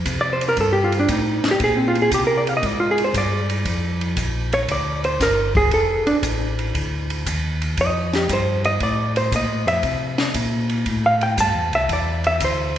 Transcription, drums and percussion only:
0.06 kick soft
0.06 hi-hat pedal medium
0.06 ride medium
0.41 ride soft
0.57 kick soft
0.57 ride medium
0.92 ride soft
1.08 kick soft
1.08 hi-hat pedal medium
1.08 ride medium
1.44 snare medium
1.44 ride soft
1.60 kick soft
1.60 ride medium
1.95 ride soft
2.11 kick soft
2.11 hi-hat pedal medium
2.11 ride medium
2.47 ride soft
2.63 kick soft
2.63 ride medium
2.98 ride soft
3.14 kick soft
3.14 hi-hat pedal medium
3.14 ride medium
3.50 ride soft
3.65 kick soft
3.65 ride medium
4.01 ride soft
4.17 kick soft
4.17 hi-hat pedal medium
4.17 ride medium
4.53 ride medium
4.68 kick soft
4.68 ride medium
5.04 ride soft
5.20 kick soft
5.20 snare soft
5.20 hi-hat pedal medium
5.20 ride medium
5.55 kick medium
5.55 ride medium
5.71 kick soft
5.71 ride medium
6.07 ride soft
6.23 kick soft
6.23 hi-hat pedal medium
6.23 ride medium
6.59 ride soft
6.75 kick soft
6.75 ride medium
7.10 ride soft
7.26 kick soft
7.26 hi-hat pedal medium
7.26 ride medium
7.62 ride medium
7.77 kick soft
7.77 ride medium
8.13 snare soft
8.13 ride soft
8.29 kick soft
8.29 hi-hat pedal medium
8.29 ride medium
8.64 ride soft
8.80 kick soft
8.80 ride medium
9.16 ride soft
9.32 kick soft
9.32 hi-hat pedal medium
9.32 ride medium
9.68 ride medium
9.83 kick soft
9.83 ride medium
10.18 snare medium
10.18 ride soft
10.34 kick soft
10.34 hi-hat pedal medium
10.34 ride medium
10.70 ride soft
10.86 kick soft
10.86 ride medium
11.21 ride soft
11.38 kick soft
11.38 hi-hat pedal medium
11.38 ride medium
11.73 ride medium
11.89 kick soft
11.89 ride medium
12.24 ride soft
12.40 kick soft
12.40 hi-hat pedal medium
12.40 ride medium

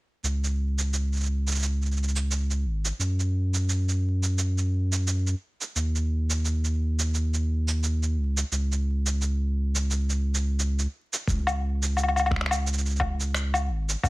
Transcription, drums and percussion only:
0.24 shaker soft
0.44 shaker soft
0.78 shaker medium
0.93 shaker soft
1.13 shaker soft
1.15 shaker soft
1.16 shaker soft
1.20 shaker soft
1.23 shaker soft
1.25 shaker soft
1.47 shaker medium
1.51 shaker soft
1.55 shaker soft
1.59 shaker soft
1.62 shaker soft
1.82 shaker soft
1.85 shaker soft
1.92 shaker soft
1.97 shaker soft
2.03 shaker soft
2.08 shaker soft
2.16 shaker medium
2.31 shaker soft
2.50 shaker soft
2.85 shaker medium
3.00 shaker soft
3.19 shaker soft
3.54 shaker medium
3.69 shaker soft
3.89 shaker soft
4.23 shaker medium
4.38 shaker soft
4.58 shaker soft
4.92 shaker medium
5.07 shaker medium
5.27 shaker soft
5.61 shaker medium
5.76 shaker soft
5.95 shaker soft
6.30 shaker medium
6.45 shaker soft
6.64 shaker soft
6.99 shaker medium
7.14 shaker soft
7.34 shaker soft
7.68 shaker medium
7.83 shaker medium
8.03 shaker soft
8.37 shaker medium
8.52 shaker medium
8.72 shaker soft
9.06 shaker medium
9.21 shaker soft
9.75 shaker medium
9.91 shaker medium
10.10 shaker soft
10.34 shaker medium
10.59 shaker medium
10.79 shaker soft
11.13 shaker medium
11.28 kick loud
11.28 shaker soft
11.47 low woodblock medium
11.47 shaker soft
11.82 shaker medium
11.97 low woodblock soft
11.97 shaker medium
12.03 low woodblock soft
12.08 low woodblock soft
12.16 low woodblock soft
12.16 shaker soft
12.19 low woodblock medium
12.26 low woodblock medium
12.31 finger snap soft
12.31 kick medium
12.36 finger snap soft
12.41 finger snap soft
12.46 finger snap medium
12.51 low woodblock medium
12.51 shaker medium
12.67 shaker soft
12.73 shaker soft
12.78 shaker soft
12.86 shaker soft
12.89 shaker soft
12.96 shaker soft
13.00 kick loud
13.00 low woodblock medium
13.20 shaker medium
13.34 finger snap medium
13.34 shaker medium
13.54 low woodblock medium
13.54 shaker soft
13.89 shaker medium
14.03 kick loud
14.03 low woodblock medium
14.03 shaker medium

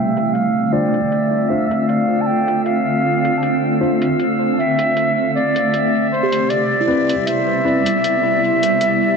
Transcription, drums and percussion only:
0.17 closed hi-hat soft
0.35 closed hi-hat soft
0.94 closed hi-hat soft
1.12 closed hi-hat soft
1.71 closed hi-hat soft
1.89 closed hi-hat soft
2.48 closed hi-hat soft
2.66 closed hi-hat soft
3.25 closed hi-hat soft
3.43 closed hi-hat soft
4.02 closed hi-hat soft
4.20 closed hi-hat soft
4.79 closed hi-hat soft
4.97 closed hi-hat soft
5.56 closed hi-hat soft
5.74 closed hi-hat soft
6.32 closed hi-hat soft
6.50 closed hi-hat soft
7.09 closed hi-hat soft
7.27 closed hi-hat soft
7.86 closed hi-hat soft
8.04 closed hi-hat soft
8.63 closed hi-hat soft
8.81 closed hi-hat soft

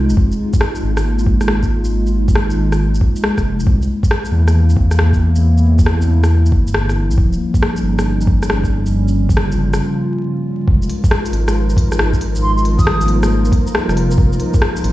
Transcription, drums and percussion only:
0.10 shaker medium
0.17 kick loud
0.32 shaker soft
0.53 kick loud
0.53 shaker medium
0.61 cross-stick loud
0.76 shaker soft
0.97 cross-stick medium
0.97 shaker medium
1.19 shaker soft
1.26 kick loud
1.41 cross-stick soft
1.41 shaker medium
1.48 cross-stick loud
1.63 kick medium
1.63 shaker soft
1.85 shaker medium
2.07 shaker soft
2.28 kick loud
2.28 shaker soft
2.35 cross-stick loud
2.50 shaker soft
2.72 cross-stick medium
2.72 shaker medium
2.94 shaker soft
3.01 kick loud
3.16 shaker medium
3.24 cross-stick loud
3.38 kick medium
3.38 cross-stick soft
3.38 shaker soft
3.60 shaker medium
3.67 kick loud
3.82 shaker soft
4.03 kick loud
4.03 shaker medium
4.11 cross-stick loud
4.25 shaker soft
4.48 cross-stick medium
4.48 shaker medium
4.70 shaker soft
4.77 kick loud
4.91 cross-stick soft
4.91 shaker medium
4.99 cross-stick loud
5.13 kick medium
5.13 shaker soft
5.35 shaker medium
5.58 shaker soft
5.79 kick loud
5.79 shaker soft
5.86 cross-stick loud
6.02 shaker soft
6.24 cross-stick medium
6.24 shaker medium
6.46 shaker soft
6.52 kick loud
6.67 shaker soft
6.74 cross-stick loud
6.89 cross-stick soft
6.89 shaker soft
7.11 shaker medium
7.18 kick loud
7.33 shaker soft
7.54 kick medium
7.54 shaker medium
7.63 cross-stick medium
7.76 shaker soft
7.99 cross-stick medium
7.99 shaker medium
8.21 shaker soft
8.27 kick loud
8.43 cross-stick medium
8.43 shaker medium
8.50 cross-stick loud
8.64 kick medium
8.64 shaker soft
8.86 shaker medium
9.08 shaker soft
9.29 kick loud
9.29 shaker medium
9.37 cross-stick loud
9.52 shaker soft
9.74 cross-stick medium
9.74 shaker medium
10.68 kick loud
10.82 shaker soft
10.90 open hi-hat medium
11.04 kick loud
11.04 shaker medium
11.11 cross-stick loud
11.26 open hi-hat soft
11.26 shaker soft
11.33 open hi-hat medium
11.48 cross-stick medium
11.48 shaker medium
11.70 shaker soft
11.77 kick loud
11.77 open hi-hat medium
11.92 cross-stick medium
11.92 shaker medium
11.99 cross-stick loud
12.13 kick medium
12.13 shaker soft
12.21 open hi-hat medium
12.35 shaker medium
12.58 shaker soft
12.65 open hi-hat medium
12.79 kick loud
12.79 shaker medium
12.87 cross-stick loud
13.01 open hi-hat soft
13.01 shaker soft
13.08 open hi-hat medium
13.23 cross-stick medium
13.23 shaker medium
13.45 shaker soft
13.52 kick loud
13.52 open hi-hat medium
13.67 shaker medium
13.75 cross-stick loud
13.89 cross-stick medium
13.89 shaker soft
13.97 open hi-hat medium
14.11 shaker medium
14.18 kick loud
14.33 shaker soft
14.40 open hi-hat medium
14.54 kick loud
14.54 shaker medium
14.62 cross-stick loud
14.77 open hi-hat soft
14.77 shaker soft
14.84 open hi-hat medium

